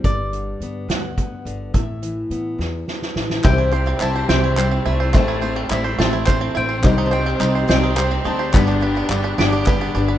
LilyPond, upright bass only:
\new Staff \with { instrumentName = "Upright bass" } { \clef bass \time 6/8 \key c \lydian \tempo 4. = 71 g,,4 g,8 d,8 r8 g,,8 | a,,4 a,8 e,8 r8 a,,8 | c,4 c,8 c,4 c,8 | a,,4 a,,8 a,,4 a,,8 |
c,4 c,8 c,4 d,8 | g,,4 g,,8 g,,4 g,,8 | }